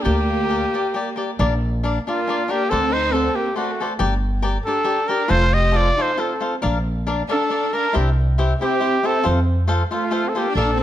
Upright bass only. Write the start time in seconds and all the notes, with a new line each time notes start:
0.06 D2
1.39 A#1
2.72 D2
4.00 G1
5.30 F1
6.64 A#1
7.96 C2
9.26 F2
10.55 A#1